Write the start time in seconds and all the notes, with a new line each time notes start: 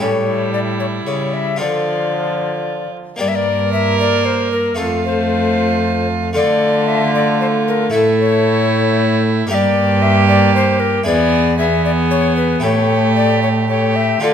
Already playing: E4
0.00 A2 G3 C#4 G4 A4 C#5
0.27 E4
0.54 D5
0.80 C#5
1.07 C#3 G3 C#5
1.34 E5
1.56 D3 D4 F4 A4 D5
1.60 D3 F3 F4
3.16 G2 A#3 D4 G4 A#4 D5
3.21 G2 A#3
3.28 E5
3.35 D5
3.73 E5
4.00 D5
4.25 C5
4.52 A#4
4.75 F2 A3 F4 A4
4.79 F4
5.05 C5
6.33 D3 A3 F4 A4 D5
6.88 E5
7.14 D5
7.41 C5
7.68 A#4
7.90 A2 A3 E4 A4
7.94 A2 A3
8.21 C#5
9.47 G2 A#3 D4 G4 A#4 E5
9.51 G2 G4 D5
10.02 E5
10.28 D5
10.55 C5
10.80 A#4
11.04 E2 B3 E4 G#4 B4 D5
11.08 E2
11.59 B3 G#4 E5
11.85 D5
12.11 C#5
12.37 B4
12.60 A2 A3 E4 G4 A4 C#5
13.16 D5
13.42 C#5
13.69 A3 G4 C#5
13.96 E5
14.20 D3 A3 D4 F4 A4 D5
14.24 F4